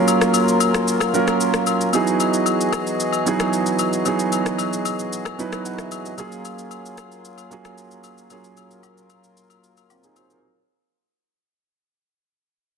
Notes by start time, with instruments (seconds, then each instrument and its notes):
Already playing: grand piano F#3 A#3 C#4 F4 G#4 A#4, harmonium F#3 A#3 F4 A#4
0.08 high agogo, shaker
0.21 cross-stick, shaker
0.34 high agogo, shaker
0.48 shaker
0.60 high agogo, shaker
0.74 cross-stick, shaker
0.88 shaker
1.00 cross-stick, high agogo, shaker
1.13 grand piano F#3 A#3 C#4 F4 A#4, shaker
1.28 cross-stick, high agogo, shaker
1.41 shaker
1.54 cross-stick, shaker
1.67 high agogo, shaker
1.81 shaker
1.93 harmonium E3 F#4 G#4 D#5, grand piano F#3 B3 D#4 E4 G#4, high agogo, shaker
2.07 shaker
2.20 high agogo, shaker
2.34 shaker
2.46 high agogo, shaker
2.61 shaker
2.72 cross-stick, high agogo, shaker
2.87 shaker
3.00 shaker
3.13 high agogo, shaker
3.26 grand piano F#3 B3 D#4 E4 G#4, shaker
3.40 cross-stick, high agogo, shaker
3.53 shaker
3.66 shaker
3.79 high agogo, shaker
3.93 shaker
4.05 grand piano F#3 B3 D#4 E4 G#4, high agogo, shaker
4.19 shaker
4.32 high agogo, shaker
4.46 cross-stick, shaker
4.58 high agogo, shaker
4.73 shaker
4.85 high agogo, shaker
4.99 shaker
5.13 shaker
5.25 cross-stick, high agogo, shaker
5.38 grand piano F#3 B3 D#4 E4 B4, shaker
5.53 cross-stick, high agogo, shaker
5.66 grand piano C#5 F#5, shaker
5.79 grand piano B4 E5, cross-stick, shaker
5.92 high agogo, shaker
6.06 grand piano G#4 D#5, shaker
6.17 grand piano F#3 A#3 C#4 F4 G#4, harmonium F#3 A#3 F4 G#4, high agogo, shaker
6.32 shaker
6.45 high agogo, shaker
6.59 shaker
6.71 high agogo, shaker
6.86 shaker
6.98 cross-stick, high agogo, shaker
7.12 shaker
7.25 shaker
7.38 high agogo, shaker
7.51 grand piano F#3 A#3 C#4 F4 G#4, shaker
7.65 cross-stick, high agogo, shaker
7.78 shaker
7.91 shaker
8.04 high agogo, shaker
8.18 shaker
8.30 grand piano F#3 A#3 C#4 F4 G#4, harmonium A#4, high agogo, shaker
8.44 shaker
8.57 high agogo, shaker
8.71 shaker
8.83 high agogo, low woodblock, shaker
8.98 shaker
9.10 high agogo, shaker
9.24 shaker
9.37 shaker
9.50 high agogo, shaker
9.64 shaker
9.77 high agogo, shaker
9.90 grand piano C4 F4, low woodblock, shaker
10.04 grand piano D#4 G#4, shaker
10.16 grand piano F#4 C5, high agogo, shaker
10.30 grand piano F4 A#4, shaker